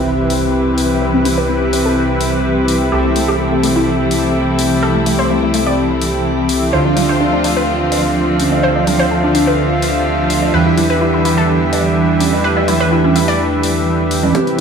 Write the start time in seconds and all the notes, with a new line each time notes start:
Already playing: C2 C3 E3 G3 C4 E4 G4 B4 E5, sub drop
0.30 open hi-hat
0.78 open hi-hat
1.02 B4
1.14 C4
1.25 C4, open hi-hat
1.38 B4
1.49 C4
1.62 C4
1.73 C4, open hi-hat
1.86 A4
2.21 open hi-hat
2.68 open hi-hat
2.92 C2 C3 E3 G3 A3 C4 E4 G4 A4 E5
3.05 A3
3.16 A3, open hi-hat
3.28 G4
3.40 A3
3.52 A3
3.63 A3, open hi-hat
3.76 E4
4.11 open hi-hat
4.59 open hi-hat
4.83 A4
4.95 A3
5.06 A3, open hi-hat
5.19 C5
5.30 A3
5.43 A3
5.54 A3, open hi-hat
5.67 D5
6.01 open hi-hat
6.49 open hi-hat
6.73 D2 D3 F3 C4 D4 F4 A4 C5 F5
6.85 D4
6.97 D4, open hi-hat, low conga
7.09 C5
7.21 D4
7.33 D4
7.44 D4, open hi-hat
7.57 B4
7.92 open hi-hat, high bongo
8.40 open hi-hat, high conga
8.52 high bongo
8.63 C5
8.76 D4, high bongo
8.87 D4, open hi-hat, low conga
8.99 C5
9.11 D4
9.23 D4
9.35 D4, open hi-hat
9.47 B4
9.82 open hi-hat
10.30 open hi-hat
10.42 high bongo
10.54 E2 E3 G3 B3 D4 E4 G4 B4 E5
10.66 E4
10.78 E4, open hi-hat, low conga
10.90 B4
11.01 E4
11.14 E4
11.25 E4, open hi-hat
11.38 A4
11.73 open hi-hat, high bongo
12.20 open hi-hat, high conga
12.33 high bongo
12.44 A3 B4
12.57 E4, high bongo
12.68 E4, open hi-hat, low conga
12.80 B4
12.92 E4
13.04 E4, high conga
13.16 E4, open hi-hat
13.28 D5, open hi-hat
13.63 open hi-hat
14.11 open hi-hat
14.23 high bongo, high conga, low conga
14.35 C3 E3 G3 C4 E4 G4 A4 B4 E5 A5, kick, closed hi-hat, riser
14.47 C4, closed hi-hat